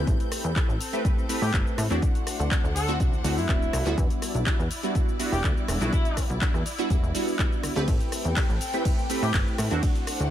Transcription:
Already playing: A3 C4 E4 G4 B4 G6
0.07 A1 C4 A4, kick, closed hi-hat, shaker
0.20 closed hi-hat, shaker
0.32 cross-stick, open hi-hat, shaker
0.44 E2, closed hi-hat, shaker
0.56 A3 C4 E4 G4 B4, kick, clap, closed hi-hat, shaker
0.69 A1, shaker
0.81 open hi-hat, shaker
0.93 A3 C4 E4 G4 B4, closed hi-hat, shaker
1.04 A3 C4 E4 G4 B4, kick, closed hi-hat, shaker
1.19 shaker
1.29 A3 C4 E4 G4 B4, open hi-hat, shaker
1.42 A2 G4, shaker
1.53 G1 A3 C4 E4 G4 B4, kick, clap, shaker
1.67 shaker
1.78 A2, cross-stick, open hi-hat, shaker
1.90 E2 A3 C4 D4 E4 F#4, closed hi-hat, shaker
2.02 D4 C5 F#5, kick, closed hi-hat, shaker
2.15 closed hi-hat, shaker
2.27 cross-stick, open hi-hat, shaker
2.40 D2, closed hi-hat, shaker
2.51 A3 C4 D4 E4 F#4, kick, clap, closed hi-hat, shaker
2.64 D2, shaker
2.76 A4, open hi-hat, shaker
2.88 A3 C4 D4 E4 F#4, closed hi-hat, shaker
3.00 C2 A3 C4 D4 E4 F#4, kick, closed hi-hat, shaker
3.13 D2, shaker
3.24 D2 A3 C4 D4 E4 F#4, open hi-hat, shaker
3.37 F#2 E4, shaker
3.49 D1 C4 D4 E4 F#4, kick, clap, closed hi-hat, shaker
3.62 shaker
3.73 C2, cross-stick, open hi-hat, shaker
3.85 D2 G3 B3 D4 E4 F#4, closed hi-hat, shaker
3.98 E2 E4 D5, kick, closed hi-hat, shaker
4.10 closed hi-hat, shaker
4.22 cross-stick, open hi-hat, shaker
4.35 B1, closed hi-hat, shaker
4.46 G3 B3 D4 E4 F#4, kick, clap, closed hi-hat, shaker
4.59 E2, shaker
4.71 open hi-hat, shaker
4.83 G3 B3 D4 E4 F#4, closed hi-hat, shaker
4.95 G3 B3 D4 E4 F#4, kick, closed hi-hat, shaker
5.09 shaker
5.19 G3 B3 D4 E4 F#4, open hi-hat, shaker
5.32 E1 G4, shaker
5.44 D2 G3 B3 D4 E4 F#4, kick, clap, closed hi-hat, shaker
5.57 shaker
5.68 E1, cross-stick, open hi-hat, shaker
5.80 B1 G3 B3 D4 E4 F#4, closed hi-hat, shaker
5.93 E4, kick, closed hi-hat, shaker
6.05 closed hi-hat, shaker
6.17 kick, cross-stick, open hi-hat, shaker
6.30 B1, closed hi-hat, shaker
6.41 G3 B3 D4 E4 F#4, kick, clap, closed hi-hat, shaker
6.54 E2, cross-stick, shaker
6.66 open hi-hat, shaker
6.78 G3 B3 D4 E4 F#4, closed hi-hat, shaker
6.90 E1 G3 D4 F#4, kick, closed hi-hat, shaker
7.03 E1, shaker
7.14 G3 B3 D4 E4 F#4, open hi-hat, shaker
7.28 shaker
7.39 G3 B3 E4 F#4, kick, clap, closed hi-hat, shaker
7.52 shaker
7.63 D2, cross-stick, open hi-hat, shaker
7.75 D2 A3 C4 E4 G4 B4, closed hi-hat, shaker
7.88 A1 C4 A4 G5, kick, closed hi-hat, ride, shaker
8.00 closed hi-hat, shaker
8.12 cross-stick, open hi-hat, shaker
8.25 E2, closed hi-hat, shaker
8.36 A3 C4 E4 G4 B4, kick, clap, closed hi-hat, ride, shaker
8.49 A1, shaker
8.61 open hi-hat, shaker
8.73 A3 C4 E4 G4 B4, closed hi-hat, shaker
8.85 A3 E4 G4, kick, closed hi-hat, ride, shaker
8.99 shaker
9.09 A3 C4 E4 G4 B4, open hi-hat, shaker
9.22 A2 G4, shaker
9.34 G1 C4 E4 G4 B4, kick, clap, closed hi-hat, ride, shaker
9.47 shaker
9.58 A2, cross-stick, open hi-hat, shaker
9.70 E2 A3 C4 D4 E4 F#4, closed hi-hat, shaker
9.83 D4 C5 F#5, kick, closed hi-hat, ride, shaker
9.95 closed hi-hat, shaker
10.07 cross-stick, open hi-hat, shaker
10.20 D2, closed hi-hat, shaker

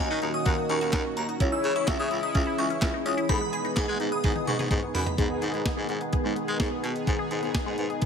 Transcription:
Already playing: D#3 A#3 C#4 D#4 F#4
0.00 D#5
0.10 D#3 F#4
0.22 D#2 D#4, closed hi-hat
0.34 C#4 D#6, closed hi-hat
0.46 D#2 F#4 A#4, kick, closed hi-hat
0.58 D#4
0.69 D#2 C#4 C#6, closed hi-hat
0.81 D#2 F#4, closed hi-hat
0.93 D#2 D#4, kick, snare, clap, closed hi-hat
1.05 C#4
1.17 D#2 A#5, closed hi-hat
1.29 D#4, closed hi-hat
1.40 C#2 E3 C#4 E4 G#4 C#5, kick, closed hi-hat
1.52 D#4 E6
1.64 C#3 C#4, closed hi-hat
1.76 E4 C#6, closed hi-hat
1.88 C#2 D#4 E5, kick, snare, clap, closed hi-hat
1.99 C#3 C#4 D#6
2.11 C#2 E4, closed hi-hat
2.23 D#4 D#6, closed hi-hat
2.35 C#2 C#4 E5, kick, closed hi-hat
2.47 E4
2.58 C#2 D#4 C#6, closed hi-hat
2.70 C#4, closed hi-hat
2.82 C#2 E4, kick, snare, clap, closed hi-hat
2.94 D#4
3.06 C#2 C#4 C#5 D#6, closed hi-hat
3.17 E4, closed hi-hat
3.29 G#2 B3 D#4 G#4 B5, kick, closed hi-hat
3.41 B3
3.53 G#4 B5, closed hi-hat
3.65 D#4, closed hi-hat
3.76 G#2 B3 G#5, kick, snare, clap, closed hi-hat
3.88 G#3 G#4
4.00 G#2 D#4, closed hi-hat
4.12 B3 D#6, closed hi-hat
4.24 G#2 G#4, kick, closed hi-hat, high tom
4.36 D#4, high tom
4.47 G#2 B3 C#6, closed hi-hat, mid tom
4.59 G#2 G#4, closed hi-hat, mid tom
4.71 G#2 D#4, kick, closed hi-hat, mid tom
4.83 B3
4.95 F#2 B5, floor tom, open hi-hat
5.06 D#4, closed hi-hat, floor tom
5.18 G#2 D#3 G#3 B3 D#4 G#4, kick, closed hi-hat
5.30 B3
5.42 G#2 G#4, closed hi-hat
5.54 G#2 G#3, closed hi-hat
5.65 B3, kick, snare, closed hi-hat
5.77 G#2 G#4
5.89 G#2 G#3, closed hi-hat
6.01 B3, closed hi-hat
6.13 G#4, kick, closed hi-hat
6.25 G#2 G#3
6.36 B3, closed hi-hat
6.48 G#3 G#4, closed hi-hat
6.60 G#2 G#3, kick, snare, closed hi-hat
6.72 B3
6.84 B2 G#4, closed hi-hat
6.96 closed hi-hat
7.07 G#2 B3, kick, closed hi-hat
7.19 G#4
7.31 G#2 G#3, closed hi-hat
7.43 G#2 B3, closed hi-hat
7.54 G#4, kick, snare, closed hi-hat
7.66 G#2 G#3
7.78 G#2 B3, closed hi-hat
7.90 G#4, closed hi-hat
8.02 G#3, kick, closed hi-hat

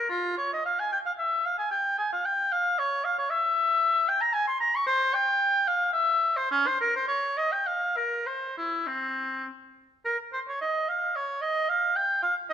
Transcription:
0.09 F4
0.38 C#5
0.53 D#5
0.65 F5
0.80 G#5
0.92 G5
1.06 F5
1.19 E5
1.46 F5
1.58 G#5
1.71 G5
1.98 G#5
2.13 F5
2.25 G5
2.52 F5
2.79 C#5
3.05 F5
3.19 C#5
3.30 E5
4.09 G5
4.21 A#5
4.33 G#5
4.48 C6
4.60 A#5
4.76 C#6
4.87 C5
5.14 G5
5.68 F5
5.93 E5
6.36 C5
6.51 C#4
6.67 C5
6.81 A#4
6.96 C5
7.08 C#5
7.38 D#5
7.52 G5
7.67 F5
7.96 A#4
8.27 C5
8.58 E4
8.87 C4
10.05 A#4
10.33 C5
10.48 C#5
10.61 D#5
10.88 F5
11.16 C#5
11.42 D#5
11.69 F5
11.96 G5
12.23 F5
12.50 D#5

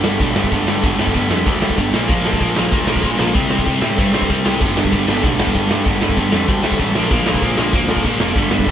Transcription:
0.03 G1 G2 D3 G3, snare
0.20 B1 G2 D3 G3, kick, open hi-hat
0.35 G1 G2 D3 G3, snare
0.44 kick
0.51 G1 G2 D3 G3, kick, open hi-hat
0.66 G2 D3 G3, snare
0.82 G1 G2 D3 G3, kick, open hi-hat
0.98 G1 G2 D3 G3, snare
1.07 kick
1.13 G1 G2 D3 G3, kick, open hi-hat
1.29 F2 G2 D3 G3, snare
1.45 D2 G2 D3 G3, kick, open hi-hat
1.61 D2 G2 D3 G3, snare
1.70 kick
1.77 G1 G2 D3 G3, kick, open hi-hat
1.92 A#1 A#2 F3 A#3, snare
2.08 A#1 A#2 F3 A#3, kick, open hi-hat
2.25 A#1 A#2 F3 A#3, snare
2.33 kick
2.40 A#1 A#2 F3 A#3, kick, open hi-hat
2.55 A#1 A#2 F3 A#3, snare
2.71 D2 A#2 F3 A#3, kick, open hi-hat
2.87 A#1 A#2 F3 A#3, snare
2.96 kick
3.02 A#1 A#2 F3 A#3, kick, open hi-hat
3.18 A#1 A#2 F3 A#3, snare
3.34 C2 C3 G3 C4, kick, open hi-hat
3.50 C2 C3 G3 C4, snare
3.59 kick
3.65 C2 C3 G3 C4, kick, open hi-hat
3.81 A2 C3 G3 C4, snare
3.97 G2 C3 G3 C4, kick, open hi-hat
4.13 G2 C3 G3 C4, snare
4.22 kick
4.29 C2 C3 G3 C4, kick, open hi-hat
4.45 C2 C3 G3 C4, snare
4.61 G1 G2 D3 G3, kick, crash
4.77 G1 G2 D3 G3, snare
4.85 kick
4.92 G1 G2 D3 G3, kick, open hi-hat
5.07 G1 G2 D3 G3, snare
5.23 B1 G2 D3 G3, kick, open hi-hat
5.39 G1 G2 D3 G3, snare
5.47 kick
5.53 G1 G2 D3 G3, kick, open hi-hat
5.69 G2 D3 G3, snare
5.85 G1 G2 D3 G3, kick, open hi-hat
6.00 G1 G2 D3 G3, snare
6.09 kick
6.16 G1 G2 D3 G3, kick, open hi-hat
6.31 F2 G2 D3 G3, snare
6.47 D2 G2 D3 G3, kick, open hi-hat
6.63 D2 G2 D3 G3, snare
6.72 kick
6.78 A1 G2 D3 G3, kick, open hi-hat
6.94 A#1 A#2 F3 A#3, snare
7.11 A#1 A#2 F3 A#3, kick, open hi-hat
7.26 A#1 A#2 F3 A#3, snare
7.34 kick
7.41 A#1 A#2 F3 A#3, kick, open hi-hat
7.57 A#1 A#2 F3 A#3, snare
7.73 D2 A#2 F3 A#3, kick, open hi-hat
7.88 A#1 A#2 F3 A#3, snare
7.97 kick
8.04 A#1 A#2 F3 A#3, kick, open hi-hat
8.19 F1 A#2 F3 A#3, snare
8.35 G1 G2 D3 G3, kick, open hi-hat
8.50 G1 G2 D3 G3, snare
8.59 kick
8.66 G1 G2 D3, kick, open hi-hat

